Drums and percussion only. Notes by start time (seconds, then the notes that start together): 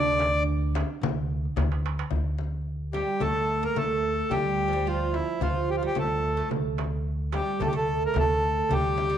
0.07 darbuka ka
0.19 darbuka tek, frame drum
0.48 darbuka ka
0.62 darbuka ka
0.75 darbuka tek, frame drum
1.03 frame drum, darbuka dum
1.18 darbuka ka
1.31 darbuka ka
1.45 darbuka ka
1.57 darbuka tek, frame drum
1.72 darbuka ka
1.86 darbuka tek
1.99 darbuka ka
2.11 frame drum
2.38 frame drum
2.93 frame drum
3.20 frame drum
3.76 frame drum
4.31 frame drum
5.14 frame drum
5.41 frame drum
5.96 frame drum
6.51 frame drum, darbuka dum
6.78 darbuka tek, frame drum
7.32 darbuka tek, frame drum
7.60 darbuka dum, frame drum
7.74 darbuka ka
8.01 darbuka ka
8.14 darbuka dum, frame drum
8.42 darbuka ka
8.69 darbuka dum, frame drum
8.84 darbuka ka
8.98 frame drum
9.11 darbuka ka